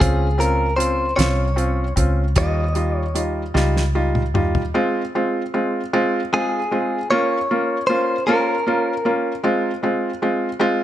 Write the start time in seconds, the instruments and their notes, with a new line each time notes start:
0.00 fingered electric bass C#2, felt piano C4 C#4 F4, clean electric guitar G#4, kick, closed hi-hat
0.38 felt piano C4 C#4 F4, clean electric guitar A#4, closed hi-hat
0.76 felt piano C4 C#4 F4, clean electric guitar C5, closed hi-hat
1.16 fingered electric bass C2, felt piano C4 C#4 F4, clean electric guitar C#5, closed hi-hat
1.21 snare
1.56 felt piano C4 C#4 F4, closed hi-hat
1.96 fingered electric bass C#2, felt piano C4 C#4 F4, kick, closed hi-hat
2.36 fingered electric bass D#2, felt piano G3 D#4 F4, clean electric guitar D#5, kick, closed hi-hat
2.75 felt piano G3 D#4 F4, closed hi-hat
2.99 clean electric guitar C#5
3.15 felt piano G3 D#4 F4, closed hi-hat
3.54 fingered electric bass C#2, felt piano G3 D#4 F4, snare
3.77 snare
3.95 felt piano G3 D#4 F4
4.15 mid tom
4.33 fingered electric bass D#2, felt piano G3 D#4 F4, mid tom
4.55 floor tom
4.74 felt piano G#3 C4 F4
5.15 felt piano G#3 C4 F4
5.54 felt piano G#3 C4 F4
5.93 felt piano G#3 C4 F4
6.32 felt piano G#3 C4 F4, clean electric guitar G#4
6.71 felt piano G#3 C4 F4
7.11 felt piano A#3 C#4 F4, clean electric guitar C#5
7.51 felt piano A#3 C#4 F4
7.87 felt piano A#3 C#4 F4, clean electric guitar C5
8.27 felt piano A#3 C#4 F4, clean electric guitar A#4
8.67 felt piano A#3 C#4 F4
9.05 felt piano A#3 C#4 F4
9.43 felt piano G#3 C4 F4
9.83 felt piano G#3 C4 F4
10.22 felt piano G#3 C4 F4
10.59 felt piano G#3 C4 F4